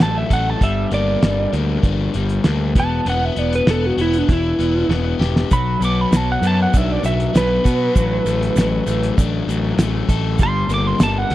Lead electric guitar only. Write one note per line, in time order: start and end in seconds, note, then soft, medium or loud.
0.03 0.16 A5 medium
0.18 0.32 E5 medium
0.33 0.50 F#5 loud
0.50 0.63 A5 medium
0.63 0.92 E5 medium
0.94 1.53 D5 loud
2.80 3.08 A5 medium
3.10 3.25 F#5 medium
3.25 3.39 E5 medium
3.39 3.53 D5 medium
3.55 3.69 B4 medium
3.71 3.86 A4 medium
3.86 4.00 F#4 medium
4.01 4.18 E4 medium
4.18 4.32 D4 medium
4.32 4.90 E4 medium
5.53 5.82 B5 loud
5.85 6.01 D6 medium
6.01 6.17 B5 medium
6.17 6.30 A5 medium
6.32 6.47 F#5 medium
6.47 6.60 A5 medium
6.62 6.77 F#5 medium
6.77 6.92 E5 medium
6.92 7.05 D5 medium
7.06 7.35 E5 medium
7.37 9.15 B4 loud
10.43 10.71 C6 loud
10.74 10.87 D6 medium
10.87 11.01 C6 medium
11.03 11.18 A5 medium
11.18 11.34 F#5 medium